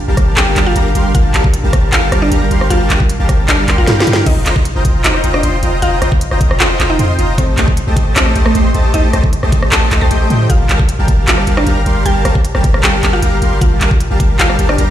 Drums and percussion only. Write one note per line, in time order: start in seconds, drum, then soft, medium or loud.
0.17 kick loud
0.17 cross-stick medium
0.17 closed hi-hat medium
0.37 clap loud
0.37 closed hi-hat medium
0.56 clap medium
0.56 closed hi-hat medium
0.76 closed hi-hat medium
0.95 closed hi-hat medium
1.15 kick loud
1.15 closed hi-hat medium
1.34 clap medium
1.34 closed hi-hat medium
1.44 kick loud
1.54 closed hi-hat medium
1.73 kick loud
1.73 cross-stick medium
1.73 closed hi-hat medium
1.93 clap loud
1.93 closed hi-hat medium
2.12 cross-stick medium
2.12 closed hi-hat medium
2.32 closed hi-hat medium
2.51 closed hi-hat medium
2.61 cross-stick medium
2.70 closed hi-hat medium
2.90 clap medium
2.90 closed hi-hat medium
3.00 kick loud
3.09 closed hi-hat medium
3.29 kick loud
3.29 cross-stick medium
3.29 closed hi-hat medium
3.48 clap loud
3.48 closed hi-hat medium
3.68 clap medium
3.68 closed hi-hat medium
3.87 snare medium
3.87 closed hi-hat medium
4.00 snare medium
4.07 closed hi-hat medium
4.13 snare loud
4.26 kick loud
4.26 closed hi-hat medium
4.26 crash loud
4.46 clap medium
4.46 closed hi-hat medium
4.56 kick loud
4.65 closed hi-hat medium
4.85 kick loud
4.85 closed hi-hat medium
5.04 clap loud
5.04 closed hi-hat medium
5.14 cross-stick medium
5.24 closed hi-hat medium
5.34 cross-stick medium
5.43 closed hi-hat medium
5.63 closed hi-hat medium
5.82 closed hi-hat medium
6.02 cross-stick medium
6.02 closed hi-hat medium
6.12 kick loud
6.21 closed hi-hat medium
6.31 cross-stick medium
6.41 kick loud
6.41 closed hi-hat medium
6.51 cross-stick medium
6.60 clap loud
6.60 closed hi-hat medium
6.80 clap medium
6.80 closed hi-hat medium
6.99 closed hi-hat medium
7.19 closed hi-hat medium
7.38 kick loud
7.38 closed hi-hat medium
7.58 clap medium
7.58 closed hi-hat medium
7.68 kick loud
7.77 closed hi-hat medium
7.97 kick loud
7.97 closed hi-hat medium
8.16 clap loud
8.16 closed hi-hat medium
8.26 cross-stick medium
8.36 closed hi-hat medium
8.46 cross-stick medium
8.55 closed hi-hat medium
8.74 closed hi-hat medium
8.94 closed hi-hat medium
9.13 cross-stick medium
9.13 closed hi-hat medium
9.24 kick loud
9.33 closed hi-hat medium
9.43 cross-stick medium
9.52 kick loud
9.52 closed hi-hat medium
9.62 cross-stick medium
9.72 clap loud
9.72 closed hi-hat medium
9.91 clap medium
9.91 closed hi-hat medium
10.11 closed hi-hat medium
10.30 closed hi-hat medium
10.50 kick loud
10.50 closed hi-hat medium
10.69 clap medium
10.69 closed hi-hat medium
10.79 kick loud
10.89 closed hi-hat medium
11.08 kick loud
11.08 closed hi-hat medium
11.28 clap loud
11.28 closed hi-hat medium
11.38 cross-stick medium
11.47 closed hi-hat medium
11.57 cross-stick medium
11.67 closed hi-hat medium
11.86 closed hi-hat medium
12.06 closed hi-hat medium
12.25 cross-stick medium
12.25 closed hi-hat medium
12.35 kick loud
12.45 closed hi-hat medium
12.55 cross-stick medium
12.64 kick loud
12.64 closed hi-hat medium
12.74 cross-stick medium
12.83 clap loud
12.83 closed hi-hat medium
13.03 clap medium
13.03 closed hi-hat medium
13.22 closed hi-hat medium
13.42 closed hi-hat medium
13.61 kick loud
13.61 closed hi-hat medium
13.81 clap medium
13.81 closed hi-hat medium
13.91 kick loud
14.00 closed hi-hat medium
14.20 kick loud
14.20 closed hi-hat medium
14.39 clap loud
14.39 closed hi-hat medium
14.50 cross-stick medium
14.59 closed hi-hat medium
14.69 cross-stick medium
14.78 closed hi-hat medium